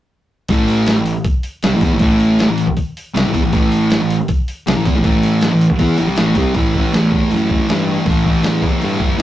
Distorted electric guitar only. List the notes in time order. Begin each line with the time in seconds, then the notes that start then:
0.50 A2 E3 A3
0.96 A2 E3
1.63 C3 G3
1.74 A2 E3
1.83 E3 B3
1.94 A2 E3
2.01 A2 E3 A3
2.49 A2 E3
3.14 C3 G3
3.25 A2 E3
3.33 E3 B3
3.43 A2 E3
3.53 A2 E3 A3
4.00 A2 E3
4.67 C3 G3
4.75 A2 E3
4.86 E3 B3
4.96 A2 E3
5.03 A2 E3 A3
5.50 A2 E3
5.79 E3 B3 E4
5.98 A2 E3
6.08 C3 G3
6.17 A2 E3 A3
6.36 C3 G3 C4
6.54 A2 E3 A3
6.75 A3
6.79 E3
6.93 A2 E3
6.97 A3
7.11 A3
7.16 E3
7.31 A2 E3
7.35 A3
7.68 A2 E3
7.72 A3
7.87 A3
7.91 E3
8.05 A2 E3
8.10 A3
8.25 A3
8.30 E3
8.43 A2 E3 A3
8.62 A3
8.66 E3
8.79 A2 E3
8.84 A3
9.18 A2